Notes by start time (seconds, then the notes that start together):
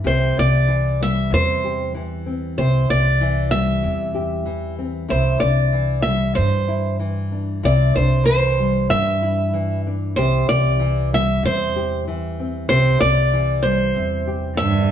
Already playing: E3 G3
0.04 C2 C3 G4 C5
0.37 C2 C4 D5
0.68 E3
1.00 G3 E5
1.30 E2 C3 C5
1.64 G4
1.94 E3
2.26 C4
2.58 C2 C3 G4 C5
2.89 C2 C4 D5
3.21 E3
3.51 G3 E5
3.83 E2 C3
4.15 G4
4.46 E3
4.79 C4
5.09 C2 C3 E4 C5
5.40 C2 D4 D5
5.73 E3
6.02 G3 E5
6.35 G2 C5
6.68 E4
6.99 E3
7.32 D4
7.63 C2 C3 E4 D5
7.96 C2 D4 C5
8.26 E3 C5
8.59 G3
8.90 G2 E5
9.22 E4
9.54 E3
9.87 D4
10.16 C2 C3 G4 C5
10.48 C2 C4 D5
10.79 E3
11.12 G3 E5
11.43 E2 C3 C5
11.76 G4
12.08 E3
12.39 C4
12.69 C2 C3 G4 C5
13.01 C2 C4 D5
13.33 E3
13.63 G3 C5
13.94 E2 C3
14.27 G4
14.57 G2 D3 E5